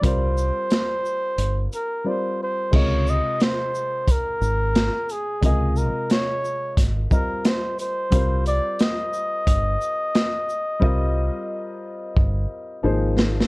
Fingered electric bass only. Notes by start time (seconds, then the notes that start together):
0.03 C2
1.38 G1
2.73 C#2
4.41 G#1
5.43 C#2
6.77 G#1
8.12 C2
9.47 G1
10.82 C2
12.16 G1
12.84 G#1